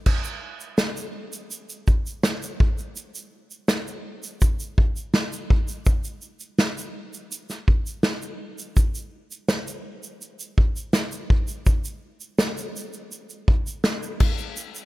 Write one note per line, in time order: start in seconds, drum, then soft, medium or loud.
0.06 kick medium
0.06 crash medium
0.24 shaker medium
0.60 shaker medium
0.78 snare loud
0.78 tambourine medium
0.78 shaker medium
0.97 shaker medium
1.33 shaker medium
1.51 shaker medium
1.70 shaker medium
1.87 kick medium
1.87 shaker medium
2.06 shaker soft
2.23 snare loud
2.23 tambourine medium
2.23 shaker medium
2.43 shaker medium
2.60 kick loud
2.78 shaker medium
2.96 shaker medium
3.15 shaker medium
3.51 shaker soft
3.68 snare loud
3.68 tambourine medium
3.68 shaker medium
3.88 shaker medium
4.23 shaker medium
4.41 kick medium
4.41 shaker medium
4.60 shaker medium
4.78 kick loud
4.96 shaker soft
5.14 snare loud
5.14 tambourine medium
5.14 shaker medium
5.33 shaker medium
5.50 kick loud
5.68 shaker medium
5.86 kick medium
5.86 shaker medium
6.04 shaker medium
6.22 shaker soft
6.40 shaker medium
6.59 snare loud
6.59 tambourine medium
6.59 shaker medium
6.78 shaker medium
7.14 shaker medium
7.32 shaker medium
7.50 snare soft
7.50 shaker soft
7.68 kick medium
7.86 shaker soft
8.03 snare loud
8.03 tambourine medium
8.03 shaker medium
8.22 shaker medium
8.59 shaker soft
8.77 kick medium
8.77 shaker medium
8.95 shaker medium
9.31 shaker medium
9.48 snare loud
9.48 tambourine medium
9.48 shaker medium
9.68 shaker medium
10.03 shaker medium
10.22 shaker medium
10.40 shaker medium
10.58 kick medium
10.76 shaker soft
10.93 snare loud
10.93 tambourine medium
10.93 shaker medium
11.12 shaker medium
11.30 kick loud
11.48 shaker soft
11.66 kick medium
11.66 shaker medium
11.85 shaker medium
12.21 shaker medium
12.38 snare loud
12.38 tambourine medium
12.38 shaker medium
12.58 shaker medium
12.76 shaker medium
12.93 shaker medium
13.12 shaker medium
13.30 shaker medium
13.48 kick loud
13.67 shaker soft
13.84 snare loud
13.84 tambourine medium
13.84 shaker medium
14.03 shaker medium
14.20 kick loud
14.20 crash medium
14.38 shaker soft
14.57 shaker medium
14.75 shaker medium